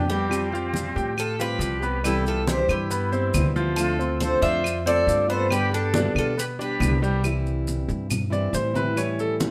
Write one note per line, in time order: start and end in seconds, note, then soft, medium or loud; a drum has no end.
0.00 0.90 F2 medium
0.08 0.46 G3 medium
0.08 0.29 G3 soft
0.08 0.30 B3 soft
0.08 1.13 C4 medium
0.08 0.30 G4 medium
0.08 1.21 G4 medium
0.08 0.46 G4 medium
0.08 high conga soft
0.08 maracas soft
0.29 0.51 F3 medium
0.29 0.51 G3 medium
0.29 0.52 C4 medium
0.29 0.50 G4 medium
0.29 high conga soft
0.29 claves medium
0.29 maracas medium
0.51 0.73 G3 soft
0.51 0.74 C4 soft
0.51 0.88 F4 medium
0.51 0.73 G4 soft
0.51 0.89 F5 medium
0.51 high conga soft
0.51 maracas soft
0.73 1.15 F3 medium
0.73 1.15 G3 medium
0.73 1.16 C4 medium
0.73 1.16 G4 medium
0.73 high conga medium
0.73 maracas medium
0.96 1.57 A2 medium
0.96 1.31 G4 medium
0.96 1.32 G5 medium
0.96 high conga soft
0.96 maracas soft
1.17 1.38 F4 medium
1.17 1.39 A4 medium
1.17 muted steel-string acoustic guitar stroke medium
1.17 high conga soft
1.17 claves medium
1.17 maracas medium
1.38 1.59 G3 soft
1.38 1.60 C4 soft
1.38 1.75 F4 medium
1.38 2.00 G4 medium
1.38 1.60 G4 soft
1.38 2.06 B4 medium
1.38 1.75 F5 medium
1.38 high conga soft
1.38 maracas soft
1.59 2.62 C2 medium
1.59 1.81 F3 medium
1.59 1.81 G3 medium
1.59 1.81 C4 medium
1.59 1.80 G4 medium
1.59 high conga soft
1.59 maracas medium
1.81 2.04 G3 soft
1.81 2.00 B3 medium
1.81 2.03 C4 soft
1.81 2.03 G4 soft
1.81 2.01 B4 medium
1.81 maracas soft
2.04 2.25 C3 medium
2.04 2.25 E3 medium
2.04 2.40 G3 medium
2.04 2.25 G3 medium
2.04 2.24 B3 medium
2.04 2.24 E4 medium
2.04 2.23 E4 medium
2.04 2.40 G4 medium
2.04 2.25 A4 medium
2.04 high conga soft
2.04 claves medium
2.04 maracas medium
2.24 2.46 G3 soft
2.24 2.46 B3 soft
2.24 2.46 E4 medium
2.24 2.47 F4 medium
2.24 2.47 A4 medium
2.24 high conga soft
2.24 maracas soft
2.47 2.88 C3 medium
2.47 2.89 E3 medium
2.47 2.89 G3 medium
2.47 2.89 E4 medium
2.47 2.68 G4 medium
2.47 2.83 C5 medium
2.47 2.71 C5 medium
2.47 high conga medium
2.47 maracas medium
2.68 3.30 G2 medium
2.68 3.52 E4 medium
2.68 3.52 G4 medium
2.68 high conga soft
2.68 claves medium
2.68 maracas soft
2.90 3.08 B3 medium
2.90 3.08 B4 medium
2.90 muted steel-string acoustic guitar stroke medium
2.90 high conga soft
2.90 maracas medium
3.12 3.34 G3 soft
3.12 3.34 B3 soft
3.12 3.48 C4 medium
3.12 3.33 E4 soft
3.12 3.48 C5 medium
3.12 high conga soft
3.12 maracas soft
3.34 4.36 D2 medium
3.34 3.55 C3 medium
3.34 3.55 E3 medium
3.34 3.56 G3 medium
3.34 3.56 B3 medium
3.34 3.55 E4 medium
3.34 high conga medium
3.34 claves medium
3.34 maracas medium
3.56 3.91 F3 medium
3.56 3.78 G3 soft
3.56 3.78 B3 soft
3.56 3.77 E4 soft
3.56 3.91 F4 medium
3.56 high conga soft
3.56 maracas soft
3.76 3.98 D3 medium
3.76 3.99 A3 medium
3.76 3.99 C4 medium
3.76 4.19 F4 medium
3.76 4.17 A4 medium
3.76 high conga soft
3.76 claves medium
3.76 maracas medium
3.81 3.98 F4 medium
3.99 4.21 A3 soft
3.99 4.35 C4 medium
3.99 4.21 C4 soft
3.99 4.20 F4 soft
3.99 4.35 C5 medium
3.99 high conga soft
3.99 maracas soft
4.20 4.63 D3 medium
4.20 4.63 A3 medium
4.20 4.64 C4 medium
4.20 4.64 F4 medium
4.20 4.42 A4 medium
4.20 4.42 C5 loud
4.20 high conga medium
4.20 maracas medium
4.42 5.03 F2 medium
4.42 4.78 F4 medium
4.42 4.84 C5 medium
4.42 4.78 D5 medium
4.42 4.87 E5 medium
4.42 high conga soft
4.42 maracas soft
4.64 muted steel-string acoustic guitar stroke medium
4.64 high conga soft
4.64 claves medium
4.64 maracas medium
4.86 5.06 A3 soft
4.86 5.21 C4 medium
4.86 5.06 C4 soft
4.86 5.06 F4 soft
4.86 5.26 A4 medium
4.86 5.22 C5 medium
4.86 5.29 D5 loud
4.86 high conga soft
4.86 maracas soft
5.06 6.09 G2 medium
5.06 5.28 D3 medium
5.06 5.28 A3 medium
5.06 5.27 C4 medium
5.06 5.26 F4 medium
5.06 high conga soft
5.06 maracas medium
5.27 5.50 A3 soft
5.27 5.47 B3 medium
5.27 5.49 C4 soft
5.27 5.49 F4 medium
5.27 5.50 A4 medium
5.27 5.47 B4 medium
5.27 5.52 C5 medium
5.27 maracas soft
5.50 5.71 D3 medium
5.50 5.86 G3 medium
5.50 5.72 G3 medium
5.50 5.72 B3 medium
5.50 5.86 G4 medium
5.50 5.71 G4 medium
5.50 5.72 B4 medium
5.50 high conga soft
5.50 claves medium
5.50 maracas medium
5.72 5.93 G3 soft
5.72 5.94 B3 soft
5.72 6.13 D4 medium
5.72 5.93 G4 soft
5.72 6.17 A4 medium
5.72 high conga soft
5.72 maracas soft
5.94 6.36 D3 medium
5.94 6.36 G3 medium
5.94 6.37 B3 medium
5.94 6.30 D4 medium
5.94 6.37 G4 medium
5.94 6.30 D5 medium
5.94 high conga medium
5.94 maracas medium
6.15 6.76 B2 medium
6.15 6.37 F4 medium
6.15 6.39 A4 medium
6.15 high conga soft
6.15 claves medium
6.15 maracas soft
6.37 6.55 B3 medium
6.37 6.44 G4 medium
6.37 6.55 B4 medium
6.37 6.45 B4 medium
6.37 muted steel-string acoustic guitar stroke medium
6.37 high conga soft
6.37 maracas medium
6.59 6.79 G3 soft
6.59 6.81 B3 soft
6.59 6.95 D4 medium
6.59 6.80 G4 soft
6.59 7.00 G4 medium
6.59 7.01 B4 medium
6.59 6.95 D5 medium
6.59 high conga soft
6.59 maracas soft
6.80 7.83 C2 medium
6.80 7.01 D3 medium
6.80 7.01 G3 medium
6.80 7.02 B3 medium
6.80 7.00 G4 medium
6.80 high conga medium
6.80 claves medium
6.80 maracas medium
7.01 7.20 G3 medium
7.01 7.23 G3 soft
7.01 7.24 B3 soft
7.01 7.23 G4 soft
7.01 7.20 G4 medium
7.01 high conga soft
7.01 maracas soft
7.22 8.09 C3 medium
7.22 8.09 E3 medium
7.22 8.10 G3 medium
7.22 8.09 C4 medium
7.22 8.10 E4 medium
7.22 high conga soft
7.22 claves medium
7.22 maracas medium
7.46 high conga soft
7.46 maracas soft
7.67 high conga medium
7.67 maracas medium
7.88 8.50 G2 medium
7.88 high conga soft
7.88 maracas soft
8.10 muted steel-string acoustic guitar stroke medium
8.10 high conga soft
8.10 low conga medium
8.10 claves medium
8.10 maracas medium
8.30 8.51 E3 medium
8.30 8.52 G3 medium
8.30 8.53 C4 medium
8.30 8.52 E4 medium
8.30 8.54 D5 medium
8.30 high conga soft
8.30 maracas soft
8.52 9.51 A2 medium
8.52 8.74 E3 medium
8.52 8.75 G3 soft
8.52 8.74 C4 soft
8.52 8.73 E4 medium
8.52 8.75 C5 medium
8.52 high conga soft
8.52 maracas medium
8.74 8.94 E3 medium
8.74 8.95 G3 medium
8.74 8.96 C4 medium
8.74 8.96 E4 medium
8.74 8.97 B4 medium
8.74 high conga medium
8.74 maracas soft
8.95 9.51 E3 medium
8.95 9.51 G3 medium
8.95 9.51 C#4 medium
8.95 9.51 E4 medium
8.95 9.19 C#5 medium
8.95 high conga soft
8.95 claves medium
8.95 maracas medium
9.19 9.33 A4 medium
9.19 high conga soft
9.19 maracas soft
9.40 high conga medium
9.40 maracas medium